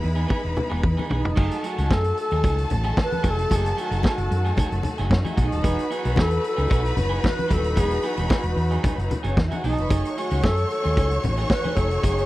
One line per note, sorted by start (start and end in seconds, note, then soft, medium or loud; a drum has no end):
0.00 1.35 G#3 medium
0.00 1.35 B3 medium
0.00 1.35 D#4 medium
0.00 1.35 E4 medium
0.00 1.33 B4 medium
0.00 1.33 B5 loud
0.00 muted clean electric guitar stroke soft
0.00 open hi-hat medium
0.04 0.24 E2 loud
0.16 0.27 E3 soft
0.16 0.27 B3 soft
0.16 0.28 D#4 medium
0.16 0.28 G#4 medium
0.16 closed hi-hat soft
0.28 0.48 E3 medium
0.28 0.43 B3 medium
0.28 0.42 D#4 medium
0.28 0.42 G#4 loud
0.28 kick loud
0.28 high tom medium
0.28 muted conga soft
0.43 0.54 E1 medium
0.43 muted clean electric guitar stroke medium
0.56 muted clean electric guitar stroke soft
0.56 mid tom medium
0.56 muted conga soft
0.56 low conga medium
0.70 0.81 E1 medium
0.70 0.82 E3 medium
0.70 0.82 B3 medium
0.70 0.82 D#4 medium
0.70 0.82 G#4 medium
0.70 mid tom medium
0.83 0.95 E2 medium
0.83 muted clean electric guitar stroke soft
0.83 kick loud
0.83 high conga medium
0.97 1.08 E3 medium
0.97 1.09 B3 medium
0.97 1.09 D#4 medium
0.97 1.09 G#4 medium
0.97 high conga medium
1.10 1.21 B1 loud
1.10 1.29 E3 medium
1.10 1.24 B3 medium
1.10 1.24 D#4 medium
1.10 1.23 G#4 medium
1.10 floor tom medium
1.15 1.68 D#4 medium
1.24 1.34 F1 medium
1.24 muted clean electric guitar stroke medium
1.24 floor tom loud
1.35 1.48 F#1 loud
1.35 5.60 D#3 medium
1.35 1.55 F#3 loud
1.35 12.26 F#3 medium
1.35 1.55 A3 loud
1.35 5.60 A3 medium
1.35 1.56 D#4 medium
1.35 9.86 F#4 medium
1.35 1.56 G#4 loud
1.35 5.01 A4 loud
1.35 5.00 A5 loud
1.35 kick loud
1.35 crash loud
1.35 muted conga soft
1.51 closed hi-hat medium
1.63 1.77 F#3 medium
1.63 1.77 A3 medium
1.63 1.77 D#4 medium
1.63 1.94 F#4 loud
1.63 1.76 G#4 medium
1.63 closed hi-hat medium
1.77 1.88 C#2 medium
1.77 1.89 F#3 medium
1.77 1.89 A3 medium
1.77 1.90 D#4 medium
1.77 1.90 G#4 medium
1.77 closed hi-hat medium
1.90 2.11 F#2 loud
1.90 2.09 F#3 loud
1.90 2.05 A3 loud
1.90 2.05 D#4 loud
1.90 2.04 G#4 loud
1.90 2.18 A4 loud
1.90 kick loud
1.90 snare loud
1.90 high conga medium
2.04 muted clean electric guitar stroke soft
2.04 closed hi-hat medium
2.17 2.69 A4 loud
2.17 muted clean electric guitar stroke soft
2.17 closed hi-hat medium
2.31 2.41 D#2 loud
2.31 2.42 F#3 medium
2.31 2.43 A3 medium
2.31 2.43 D#4 medium
2.31 2.43 G#4 medium
2.31 closed hi-hat soft
2.44 2.64 C#2 medium
2.44 2.62 F#3 medium
2.44 2.58 A3 loud
2.44 2.57 D#4 loud
2.44 2.57 G#4 loud
2.44 kick loud
2.44 closed hi-hat medium
2.44 muted conga soft
2.58 muted clean electric guitar stroke soft
2.58 closed hi-hat medium
2.70 2.91 A1 loud
2.70 muted clean electric guitar stroke medium
2.70 closed hi-hat medium
2.70 muted conga medium
2.70 low conga medium
2.83 2.98 F#3 medium
2.83 2.98 A3 medium
2.83 2.98 D#4 medium
2.83 2.98 G#4 medium
2.83 closed hi-hat soft
2.97 kick loud
2.97 snare loud
2.97 high conga medium
3.03 3.31 B4 loud
3.11 muted clean electric guitar stroke soft
3.11 closed hi-hat soft
3.11 high conga medium
3.23 3.44 F1 loud
3.23 3.42 F#3 medium
3.23 3.37 A3 medium
3.23 3.37 D#4 loud
3.23 3.37 G#4 loud
3.23 kick loud
3.23 closed hi-hat medium
3.30 3.57 A4 loud
3.38 muted clean electric guitar stroke medium
3.38 closed hi-hat medium
3.50 3.71 F#1 loud
3.50 3.69 F#3 medium
3.50 3.69 A3 medium
3.50 3.70 D#4 medium
3.50 3.70 G#4 medium
3.50 kick loud
3.50 closed hi-hat loud
3.50 muted conga soft
3.55 3.82 G#4 loud
3.66 closed hi-hat medium
3.77 3.91 F#3 medium
3.77 3.91 A3 medium
3.77 3.91 D#4 medium
3.77 3.90 G#4 medium
3.77 closed hi-hat medium
3.81 4.06 F#4 medium
3.91 4.01 F#1 loud
3.91 4.02 F#3 medium
3.91 4.03 A3 medium
3.91 4.04 D#4 medium
3.91 4.03 G#4 medium
3.91 closed hi-hat medium
4.03 4.22 F#3 medium
4.03 4.18 A3 loud
4.03 4.18 D#4 loud
4.03 4.18 G#4 loud
4.03 kick loud
4.03 snare loud
4.03 high conga medium
4.08 4.56 F#4 medium
4.18 4.27 F#1 medium
4.18 muted clean electric guitar stroke soft
4.18 closed hi-hat soft
4.30 4.51 F#2 loud
4.30 muted clean electric guitar stroke soft
4.30 closed hi-hat medium
4.45 4.57 F#3 medium
4.45 4.57 A3 medium
4.45 4.57 D#4 medium
4.45 4.58 G#4 medium
4.45 closed hi-hat soft
4.57 4.76 F#3 loud
4.57 4.71 A3 loud
4.57 4.70 D#4 loud
4.57 4.70 G#4 loud
4.57 kick loud
4.57 closed hi-hat medium
4.57 muted conga soft
4.57 low conga medium
4.71 4.81 F#1 medium
4.71 muted clean electric guitar stroke soft
4.71 closed hi-hat medium
4.83 muted clean electric guitar stroke soft
4.83 closed hi-hat medium
4.83 muted conga medium
4.83 low conga medium
4.98 5.08 F#1 medium
4.98 5.10 F#3 medium
4.98 5.10 A3 medium
4.98 5.11 D#4 medium
4.98 5.11 G#4 medium
4.98 snare soft
4.98 closed hi-hat soft
5.10 5.21 F#2 loud
5.10 5.19 C#4 medium
5.10 5.19 C#5 medium
5.10 muted clean electric guitar stroke medium
5.10 kick loud
5.10 snare loud
5.10 high conga medium
5.20 5.28 D#4 medium
5.20 5.28 D#5 medium
5.25 5.35 F#3 medium
5.25 5.36 A3 medium
5.25 5.36 D#4 medium
5.25 5.36 E4 medium
5.25 5.36 G#4 medium
5.25 5.37 E5 medium
5.25 closed hi-hat soft
5.25 high conga medium
5.36 5.48 B1 loud
5.36 5.55 F#3 medium
5.36 5.50 A3 loud
5.36 5.50 D#4 medium
5.36 5.45 F#4 medium
5.36 5.50 G#4 medium
5.36 5.45 F#5 medium
5.36 kick loud
5.36 closed hi-hat medium
5.42 5.94 D#4 medium
5.42 5.54 G#4 medium
5.42 5.54 G#5 medium
5.51 5.62 D#1 medium
5.51 5.63 A4 medium
5.51 5.63 A5 medium
5.51 muted clean electric guitar stroke soft
5.51 closed hi-hat medium
5.62 5.75 E1 loud
5.62 9.86 E3 medium
5.62 5.82 F#3 medium
5.62 5.82 B3 medium
5.62 5.82 D#4 loud
5.62 9.86 D#4 medium
5.62 5.83 G#4 loud
5.62 9.19 B4 loud
5.62 9.18 B5 loud
5.62 kick loud
5.62 closed hi-hat medium
5.62 muted conga soft
5.79 closed hi-hat medium
5.90 6.03 F#3 medium
5.90 6.03 B3 medium
5.90 6.03 D#4 medium
5.90 6.22 F#4 loud
5.90 6.02 G#4 medium
5.90 closed hi-hat medium
6.04 6.14 B1 medium
6.04 6.15 F#3 medium
6.04 6.16 B3 medium
6.04 6.16 D#4 medium
6.04 6.17 G#4 medium
6.04 closed hi-hat medium
6.16 6.37 E2 medium
6.16 6.35 F#3 medium
6.16 6.31 B3 medium
6.16 6.30 D#4 loud
6.16 6.30 G#4 loud
6.16 6.45 A4 loud
6.16 kick loud
6.16 snare loud
6.16 high conga medium
6.31 muted clean electric guitar stroke soft
6.31 closed hi-hat soft
6.43 muted clean electric guitar stroke soft
6.43 closed hi-hat medium
6.48 6.95 A4 loud
6.57 6.67 C#2 medium
6.57 6.69 F#3 soft
6.57 6.69 B3 soft
6.57 6.69 D#4 medium
6.57 6.69 G#4 medium
6.57 closed hi-hat soft
6.70 6.91 B1 medium
6.70 6.89 F#3 loud
6.70 6.83 B3 medium
6.70 6.82 D#4 loud
6.70 6.82 G#4 medium
6.70 kick loud
6.70 closed hi-hat medium
6.83 muted clean electric guitar stroke medium
6.83 closed hi-hat medium
6.95 7.17 F#1 medium
6.95 muted clean electric guitar stroke soft
6.95 closed hi-hat medium
6.95 muted conga medium
6.95 low conga medium
7.09 7.21 F#3 medium
7.09 7.21 B3 medium
7.09 7.21 D#4 medium
7.09 7.21 G#4 medium
7.09 closed hi-hat soft
7.22 7.54 B4 loud
7.22 muted clean electric guitar stroke soft
7.22 kick loud
7.22 snare loud
7.22 high conga medium
7.35 muted clean electric guitar stroke soft
7.35 closed hi-hat soft
7.35 high conga medium
7.48 7.77 D#1 loud
7.48 7.69 F#3 medium
7.48 7.62 B3 medium
7.48 7.61 D#4 medium
7.48 7.61 G#4 medium
7.48 kick medium
7.48 closed hi-hat medium
7.53 7.80 A4 loud
7.62 muted clean electric guitar stroke soft
7.62 closed hi-hat medium
7.75 7.97 E1 medium
7.75 7.95 F#3 medium
7.75 7.95 B3 medium
7.75 7.95 D#4 medium
7.75 7.95 G#4 loud
7.75 8.09 G#4 loud
7.75 kick loud
7.75 closed hi-hat medium
7.75 muted conga medium
7.91 closed hi-hat medium
8.02 8.16 F#3 medium
8.02 8.16 B3 medium
8.02 8.16 D#4 medium
8.02 8.16 G#4 medium
8.02 closed hi-hat medium
8.07 8.32 F#4 medium
8.17 8.27 E1 loud
8.17 8.27 F#3 medium
8.17 8.28 B3 medium
8.17 8.28 D#4 medium
8.17 8.29 G#4 medium
8.17 closed hi-hat medium
8.29 8.48 F#3 medium
8.29 8.44 B3 loud
8.29 8.44 D#4 loud
8.29 8.43 G#4 loud
8.29 kick loud
8.29 snare loud
8.29 high conga medium
8.35 8.82 F#4 medium
8.43 8.53 E1 loud
8.43 muted clean electric guitar stroke medium
8.43 closed hi-hat medium
8.56 8.76 E2 loud
8.56 muted clean electric guitar stroke soft
8.56 open hi-hat medium
8.71 8.82 F#3 soft
8.71 8.82 B3 soft
8.71 8.82 D#4 medium
8.71 8.83 G#4 medium
8.71 closed hi-hat soft
8.83 9.02 F#3 loud
8.83 8.97 B3 medium
8.83 8.96 D#4 loud
8.83 8.96 G#4 loud
8.83 kick loud
8.83 closed hi-hat medium
8.83 low conga medium
8.97 9.07 F#1 medium
8.97 muted clean electric guitar stroke medium
8.97 closed hi-hat soft
9.10 muted clean electric guitar stroke soft
9.10 closed hi-hat medium
9.10 muted conga medium
9.10 low conga medium
9.23 9.34 F#1 medium
9.23 9.36 F#3 medium
9.23 9.37 B3 medium
9.23 9.37 D#4 medium
9.23 9.37 G#4 medium
9.23 closed hi-hat soft
9.28 9.37 C#4 medium
9.28 9.37 C#5 medium
9.37 9.47 E2 loud
9.37 9.45 D#4 medium
9.37 9.45 D#5 medium
9.37 kick loud
9.37 snare loud
9.37 high conga medium
9.46 9.55 E4 medium
9.46 9.55 E5 medium
9.51 9.62 F#3 medium
9.51 9.63 B3 medium
9.51 9.63 D#4 medium
9.51 9.63 F#4 medium
9.51 9.63 G#4 medium
9.51 9.63 F#5 medium
9.51 closed hi-hat soft
9.51 high conga medium
9.63 9.74 B1 medium
9.63 9.84 F#3 medium
9.63 9.78 B3 medium
9.63 9.78 D#4 loud
9.63 10.20 D#4 medium
9.63 9.72 G#4 medium
9.63 9.77 G#4 medium
9.63 9.72 G#5 medium
9.63 open hi-hat medium
9.72 9.81 A4 medium
9.72 9.81 A5 medium
9.78 9.88 F1 medium
9.78 9.90 B4 loud
9.78 9.90 B5 loud
9.78 muted clean electric guitar stroke soft
9.78 closed hi-hat medium
9.89 10.01 F#1 loud
9.89 12.26 D#3 medium
9.89 10.08 F#3 medium
9.89 12.26 A3 medium
9.89 10.08 A3 medium
9.89 10.09 D#4 medium
9.89 12.26 F#4 loud
9.89 10.09 G#4 loud
9.89 12.26 C#5 loud
9.89 12.26 C#6 loud
9.89 kick loud
9.89 closed hi-hat loud
9.89 muted conga medium
10.05 closed hi-hat medium
10.17 10.30 F#3 medium
10.17 10.30 A3 medium
10.17 10.30 D#4 medium
10.17 10.45 F#4 loud
10.17 10.29 G#4 medium
10.17 closed hi-hat medium
10.31 10.40 C#2 loud
10.31 10.41 F#3 medium
10.31 10.42 A3 medium
10.31 10.42 D#4 medium
10.31 10.43 G#4 medium
10.31 closed hi-hat medium
10.43 10.63 F#2 loud
10.43 10.61 F#3 medium
10.43 10.56 A3 medium
10.43 10.55 D#4 loud
10.43 10.55 G#4 loud
10.43 10.70 A4 loud
10.43 kick loud
10.43 snare loud
10.43 high conga medium
10.56 muted clean electric guitar stroke soft
10.56 closed hi-hat soft
10.70 11.20 A4 loud
10.70 muted clean electric guitar stroke soft
10.70 closed hi-hat medium
10.84 10.94 D#2 loud
10.84 10.95 F#3 soft
10.84 10.96 A3 soft
10.84 10.96 D#4 medium
10.84 10.96 G#4 medium
10.84 closed hi-hat soft
10.96 11.17 C#2 loud
10.96 11.15 F#3 medium
10.96 11.11 A3 medium
10.96 11.10 D#4 loud
10.96 11.10 G#4 loud
10.96 kick loud
10.96 closed hi-hat medium
11.11 muted clean electric guitar stroke soft
11.11 closed hi-hat medium
11.23 11.43 A1 medium
11.23 muted clean electric guitar stroke medium
11.23 closed hi-hat medium
11.23 muted conga medium
11.23 low conga medium
11.37 11.48 F#3 medium
11.37 11.49 A3 medium
11.37 11.49 D#4 medium
11.37 11.49 G#4 medium
11.37 snare soft
11.37 closed hi-hat soft
11.50 11.77 B4 loud
11.50 muted clean electric guitar stroke soft
11.50 kick loud
11.50 snare loud
11.50 high conga medium
11.64 11.75 F#3 medium
11.64 11.75 A3 medium
11.64 11.76 D#4 medium
11.64 11.76 G#4 medium
11.64 closed hi-hat soft
11.64 high conga medium
11.75 11.97 F1 loud
11.75 11.95 F#3 medium
11.75 11.90 A3 medium
11.75 11.90 D#4 medium
11.75 11.89 G#4 medium
11.75 12.04 A4 medium
11.75 kick medium
11.75 closed hi-hat medium
11.91 muted clean electric guitar stroke soft
11.91 closed hi-hat medium
12.02 12.23 F#1 loud
12.02 12.22 F#3 medium
12.02 12.22 A3 medium
12.02 12.22 D#4 loud
12.02 12.26 G#4 loud
12.02 12.22 G#4 medium
12.02 kick loud
12.02 closed hi-hat loud
12.02 muted conga soft
12.18 closed hi-hat medium